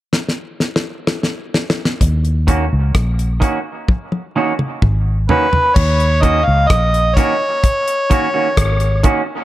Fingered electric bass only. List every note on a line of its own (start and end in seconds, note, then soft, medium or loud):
2.02 2.68 D#2 loud
2.73 2.94 C#2 medium
2.95 3.39 A#1 medium
4.83 5.27 G#1 medium
5.77 6.43 D#2 loud
6.48 6.69 C#2 medium
6.71 7.14 A#1 medium
8.58 9.02 G#1 medium